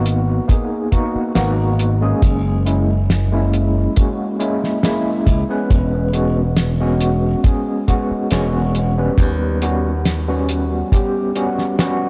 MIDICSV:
0, 0, Header, 1, 5, 480
1, 0, Start_track
1, 0, Tempo, 869565
1, 1230, Time_signature, 4, 2, 24, 8
1, 6676, End_track
2, 0, Start_track
2, 0, Title_t, "Tine electric piano"
2, 0, Program_c, 0, 4
2, 0, Note_on_c, 0, 58, 90
2, 0, Note_on_c, 0, 59, 83
2, 0, Note_on_c, 0, 63, 80
2, 0, Note_on_c, 0, 66, 97
2, 240, Note_off_c, 0, 58, 0
2, 242, Note_off_c, 0, 59, 0
2, 243, Note_off_c, 0, 63, 0
2, 244, Note_off_c, 0, 66, 0
2, 265, Note_on_c, 0, 58, 84
2, 267, Note_on_c, 0, 59, 76
2, 269, Note_on_c, 0, 63, 74
2, 273, Note_on_c, 0, 68, 89
2, 480, Note_off_c, 0, 58, 0
2, 482, Note_off_c, 0, 59, 0
2, 483, Note_off_c, 0, 63, 0
2, 484, Note_off_c, 0, 68, 0
2, 505, Note_on_c, 0, 58, 90
2, 509, Note_on_c, 0, 59, 86
2, 511, Note_on_c, 0, 63, 85
2, 513, Note_on_c, 0, 66, 103
2, 721, Note_off_c, 0, 58, 0
2, 722, Note_off_c, 0, 59, 0
2, 723, Note_off_c, 0, 63, 0
2, 725, Note_off_c, 0, 66, 0
2, 745, Note_on_c, 0, 58, 91
2, 748, Note_on_c, 0, 59, 87
2, 750, Note_on_c, 0, 63, 84
2, 753, Note_on_c, 0, 66, 97
2, 1084, Note_off_c, 0, 58, 0
2, 1086, Note_off_c, 0, 59, 0
2, 1087, Note_off_c, 0, 63, 0
2, 1088, Note_off_c, 0, 66, 0
2, 1111, Note_on_c, 0, 56, 88
2, 1114, Note_on_c, 0, 58, 81
2, 1117, Note_on_c, 0, 61, 83
2, 1119, Note_on_c, 0, 68, 94
2, 1440, Note_off_c, 0, 56, 0
2, 1441, Note_off_c, 0, 58, 0
2, 1443, Note_off_c, 0, 61, 0
2, 1444, Note_off_c, 0, 68, 0
2, 1464, Note_on_c, 0, 56, 82
2, 1467, Note_on_c, 0, 58, 70
2, 1469, Note_on_c, 0, 61, 71
2, 1472, Note_on_c, 0, 64, 86
2, 1613, Note_off_c, 0, 56, 0
2, 1615, Note_off_c, 0, 58, 0
2, 1616, Note_off_c, 0, 61, 0
2, 1617, Note_off_c, 0, 64, 0
2, 1832, Note_on_c, 0, 56, 87
2, 1834, Note_on_c, 0, 58, 80
2, 1837, Note_on_c, 0, 61, 80
2, 1840, Note_on_c, 0, 64, 94
2, 2160, Note_off_c, 0, 56, 0
2, 2162, Note_off_c, 0, 58, 0
2, 2163, Note_off_c, 0, 61, 0
2, 2165, Note_off_c, 0, 64, 0
2, 2185, Note_on_c, 0, 56, 84
2, 2188, Note_on_c, 0, 58, 73
2, 2191, Note_on_c, 0, 61, 73
2, 2194, Note_on_c, 0, 66, 86
2, 2400, Note_off_c, 0, 56, 0
2, 2402, Note_off_c, 0, 58, 0
2, 2403, Note_off_c, 0, 61, 0
2, 2405, Note_off_c, 0, 66, 0
2, 2424, Note_on_c, 0, 56, 90
2, 2427, Note_on_c, 0, 58, 82
2, 2429, Note_on_c, 0, 61, 82
2, 2433, Note_on_c, 0, 64, 100
2, 2640, Note_off_c, 0, 56, 0
2, 2641, Note_off_c, 0, 58, 0
2, 2643, Note_off_c, 0, 61, 0
2, 2644, Note_off_c, 0, 64, 0
2, 2664, Note_on_c, 0, 56, 91
2, 2667, Note_on_c, 0, 58, 86
2, 2670, Note_on_c, 0, 61, 82
2, 2672, Note_on_c, 0, 64, 100
2, 3004, Note_off_c, 0, 56, 0
2, 3005, Note_off_c, 0, 58, 0
2, 3006, Note_off_c, 0, 61, 0
2, 3008, Note_off_c, 0, 64, 0
2, 3031, Note_on_c, 0, 56, 85
2, 3034, Note_on_c, 0, 59, 83
2, 3037, Note_on_c, 0, 61, 84
2, 3040, Note_on_c, 0, 71, 99
2, 3360, Note_off_c, 0, 56, 0
2, 3361, Note_off_c, 0, 59, 0
2, 3363, Note_off_c, 0, 61, 0
2, 3364, Note_off_c, 0, 71, 0
2, 3385, Note_on_c, 0, 56, 81
2, 3388, Note_on_c, 0, 59, 73
2, 3391, Note_on_c, 0, 61, 75
2, 3394, Note_on_c, 0, 66, 89
2, 3534, Note_off_c, 0, 56, 0
2, 3535, Note_off_c, 0, 59, 0
2, 3537, Note_off_c, 0, 61, 0
2, 3538, Note_off_c, 0, 66, 0
2, 3754, Note_on_c, 0, 56, 91
2, 3756, Note_on_c, 0, 59, 81
2, 3759, Note_on_c, 0, 61, 84
2, 3761, Note_on_c, 0, 66, 97
2, 4081, Note_off_c, 0, 56, 0
2, 4083, Note_off_c, 0, 59, 0
2, 4084, Note_off_c, 0, 61, 0
2, 4085, Note_off_c, 0, 66, 0
2, 4106, Note_on_c, 0, 56, 82
2, 4108, Note_on_c, 0, 59, 73
2, 4111, Note_on_c, 0, 61, 74
2, 4114, Note_on_c, 0, 68, 91
2, 4321, Note_off_c, 0, 56, 0
2, 4322, Note_off_c, 0, 59, 0
2, 4324, Note_off_c, 0, 61, 0
2, 4325, Note_off_c, 0, 68, 0
2, 4346, Note_on_c, 0, 56, 88
2, 4349, Note_on_c, 0, 59, 82
2, 4351, Note_on_c, 0, 61, 79
2, 4354, Note_on_c, 0, 66, 97
2, 4561, Note_off_c, 0, 56, 0
2, 4562, Note_off_c, 0, 59, 0
2, 4564, Note_off_c, 0, 61, 0
2, 4565, Note_off_c, 0, 66, 0
2, 4586, Note_on_c, 0, 56, 91
2, 4589, Note_on_c, 0, 59, 81
2, 4592, Note_on_c, 0, 61, 83
2, 4594, Note_on_c, 0, 66, 103
2, 4925, Note_off_c, 0, 56, 0
2, 4926, Note_off_c, 0, 59, 0
2, 4927, Note_off_c, 0, 61, 0
2, 4929, Note_off_c, 0, 66, 0
2, 4955, Note_on_c, 0, 55, 92
2, 4957, Note_on_c, 0, 59, 83
2, 4960, Note_on_c, 0, 61, 86
2, 4963, Note_on_c, 0, 71, 101
2, 5282, Note_off_c, 0, 55, 0
2, 5283, Note_off_c, 0, 59, 0
2, 5285, Note_off_c, 0, 61, 0
2, 5286, Note_off_c, 0, 71, 0
2, 5308, Note_on_c, 0, 55, 80
2, 5311, Note_on_c, 0, 59, 74
2, 5314, Note_on_c, 0, 61, 76
2, 5316, Note_on_c, 0, 66, 88
2, 5455, Note_off_c, 0, 55, 0
2, 5457, Note_off_c, 0, 59, 0
2, 5458, Note_off_c, 0, 61, 0
2, 5459, Note_off_c, 0, 66, 0
2, 5675, Note_on_c, 0, 55, 85
2, 5677, Note_on_c, 0, 59, 85
2, 5680, Note_on_c, 0, 61, 82
2, 5683, Note_on_c, 0, 66, 97
2, 6002, Note_off_c, 0, 55, 0
2, 6003, Note_off_c, 0, 59, 0
2, 6004, Note_off_c, 0, 61, 0
2, 6006, Note_off_c, 0, 66, 0
2, 6027, Note_on_c, 0, 55, 84
2, 6030, Note_on_c, 0, 59, 76
2, 6033, Note_on_c, 0, 61, 73
2, 6036, Note_on_c, 0, 67, 92
2, 6242, Note_off_c, 0, 55, 0
2, 6243, Note_off_c, 0, 59, 0
2, 6244, Note_off_c, 0, 61, 0
2, 6246, Note_off_c, 0, 67, 0
2, 6266, Note_on_c, 0, 55, 91
2, 6269, Note_on_c, 0, 59, 83
2, 6272, Note_on_c, 0, 61, 82
2, 6274, Note_on_c, 0, 66, 100
2, 6481, Note_off_c, 0, 55, 0
2, 6482, Note_off_c, 0, 59, 0
2, 6484, Note_off_c, 0, 61, 0
2, 6485, Note_off_c, 0, 66, 0
2, 6505, Note_on_c, 0, 55, 93
2, 6508, Note_on_c, 0, 59, 82
2, 6512, Note_on_c, 0, 61, 84
2, 6515, Note_on_c, 0, 66, 107
2, 6676, Note_off_c, 0, 55, 0
2, 6676, Note_off_c, 0, 59, 0
2, 6676, Note_off_c, 0, 61, 0
2, 6676, Note_off_c, 0, 66, 0
2, 6676, End_track
3, 0, Start_track
3, 0, Title_t, "Slap bass"
3, 0, Program_c, 1, 36
3, 0, Note_on_c, 1, 32, 96
3, 214, Note_off_c, 1, 32, 0
3, 749, Note_on_c, 1, 32, 98
3, 1174, Note_off_c, 1, 32, 0
3, 1228, Note_on_c, 1, 30, 95
3, 2133, Note_off_c, 1, 30, 0
3, 2906, Note_on_c, 1, 37, 97
3, 2996, Note_off_c, 1, 37, 0
3, 3148, Note_on_c, 1, 28, 96
3, 4053, Note_off_c, 1, 28, 0
3, 4590, Note_on_c, 1, 28, 99
3, 5014, Note_off_c, 1, 28, 0
3, 5065, Note_on_c, 1, 39, 96
3, 5972, Note_off_c, 1, 39, 0
3, 6676, End_track
4, 0, Start_track
4, 0, Title_t, "Muted slap bass strokes"
4, 636, Note_on_c, 9, 29, 41
4, 691, Note_off_c, 9, 29, 0
4, 4477, Note_on_c, 9, 29, 41
4, 4532, Note_off_c, 9, 29, 0
4, 6676, End_track
5, 0, Start_track
5, 0, Title_t, "Drums"
5, 31, Note_on_c, 9, 42, 75
5, 86, Note_off_c, 9, 42, 0
5, 272, Note_on_c, 9, 36, 122
5, 274, Note_on_c, 9, 42, 80
5, 327, Note_off_c, 9, 36, 0
5, 329, Note_off_c, 9, 42, 0
5, 509, Note_on_c, 9, 42, 69
5, 510, Note_on_c, 9, 36, 59
5, 564, Note_off_c, 9, 42, 0
5, 565, Note_off_c, 9, 36, 0
5, 748, Note_on_c, 9, 38, 115
5, 748, Note_on_c, 9, 42, 94
5, 803, Note_off_c, 9, 38, 0
5, 803, Note_off_c, 9, 42, 0
5, 991, Note_on_c, 9, 42, 79
5, 1046, Note_off_c, 9, 42, 0
5, 1228, Note_on_c, 9, 36, 126
5, 1228, Note_on_c, 9, 42, 85
5, 1283, Note_off_c, 9, 36, 0
5, 1283, Note_off_c, 9, 42, 0
5, 1471, Note_on_c, 9, 42, 66
5, 1526, Note_off_c, 9, 42, 0
5, 1710, Note_on_c, 9, 38, 120
5, 1712, Note_on_c, 9, 42, 86
5, 1765, Note_off_c, 9, 38, 0
5, 1767, Note_off_c, 9, 42, 0
5, 1951, Note_on_c, 9, 42, 72
5, 2006, Note_off_c, 9, 42, 0
5, 2187, Note_on_c, 9, 42, 82
5, 2192, Note_on_c, 9, 36, 110
5, 2243, Note_off_c, 9, 42, 0
5, 2247, Note_off_c, 9, 36, 0
5, 2430, Note_on_c, 9, 42, 69
5, 2485, Note_off_c, 9, 42, 0
5, 2559, Note_on_c, 9, 38, 39
5, 2614, Note_off_c, 9, 38, 0
5, 2667, Note_on_c, 9, 38, 118
5, 2668, Note_on_c, 9, 42, 77
5, 2722, Note_off_c, 9, 38, 0
5, 2723, Note_off_c, 9, 42, 0
5, 2906, Note_on_c, 9, 36, 90
5, 2909, Note_on_c, 9, 42, 70
5, 2961, Note_off_c, 9, 36, 0
5, 2964, Note_off_c, 9, 42, 0
5, 3149, Note_on_c, 9, 36, 124
5, 3150, Note_on_c, 9, 42, 74
5, 3204, Note_off_c, 9, 36, 0
5, 3205, Note_off_c, 9, 42, 0
5, 3387, Note_on_c, 9, 42, 66
5, 3442, Note_off_c, 9, 42, 0
5, 3625, Note_on_c, 9, 38, 109
5, 3625, Note_on_c, 9, 42, 87
5, 3680, Note_off_c, 9, 38, 0
5, 3680, Note_off_c, 9, 42, 0
5, 3867, Note_on_c, 9, 42, 72
5, 3922, Note_off_c, 9, 42, 0
5, 4109, Note_on_c, 9, 36, 126
5, 4109, Note_on_c, 9, 42, 84
5, 4164, Note_off_c, 9, 36, 0
5, 4164, Note_off_c, 9, 42, 0
5, 4351, Note_on_c, 9, 36, 58
5, 4351, Note_on_c, 9, 42, 71
5, 4406, Note_off_c, 9, 36, 0
5, 4406, Note_off_c, 9, 42, 0
5, 4586, Note_on_c, 9, 42, 86
5, 4592, Note_on_c, 9, 38, 106
5, 4641, Note_off_c, 9, 42, 0
5, 4647, Note_off_c, 9, 38, 0
5, 4829, Note_on_c, 9, 42, 66
5, 4885, Note_off_c, 9, 42, 0
5, 5065, Note_on_c, 9, 36, 110
5, 5067, Note_on_c, 9, 42, 74
5, 5121, Note_off_c, 9, 36, 0
5, 5123, Note_off_c, 9, 42, 0
5, 5309, Note_on_c, 9, 42, 74
5, 5365, Note_off_c, 9, 42, 0
5, 5550, Note_on_c, 9, 38, 102
5, 5550, Note_on_c, 9, 42, 86
5, 5605, Note_off_c, 9, 38, 0
5, 5605, Note_off_c, 9, 42, 0
5, 5789, Note_on_c, 9, 42, 75
5, 5845, Note_off_c, 9, 42, 0
5, 6028, Note_on_c, 9, 36, 98
5, 6031, Note_on_c, 9, 42, 86
5, 6083, Note_off_c, 9, 36, 0
5, 6086, Note_off_c, 9, 42, 0
5, 6268, Note_on_c, 9, 42, 70
5, 6323, Note_off_c, 9, 42, 0
5, 6394, Note_on_c, 9, 38, 32
5, 6450, Note_off_c, 9, 38, 0
5, 6507, Note_on_c, 9, 38, 118
5, 6508, Note_on_c, 9, 42, 74
5, 6562, Note_off_c, 9, 38, 0
5, 6563, Note_off_c, 9, 42, 0
5, 6676, End_track
0, 0, End_of_file